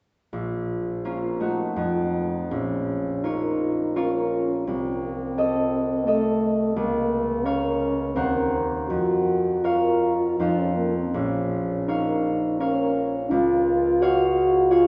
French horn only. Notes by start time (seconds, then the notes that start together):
2.50 C#4
3.23 D#4
3.97 C#4
4.68 C4
6.06 A3
6.76 A#3
7.44 C#4
8.15 C4
8.89 F#4
9.63 F4
10.40 D#4
10.59 C#4
10.77 A#3
10.97 C4
11.15 C#4
11.88 D#4
12.60 C#4
13.31 F4
14.02 F#4
14.71 F4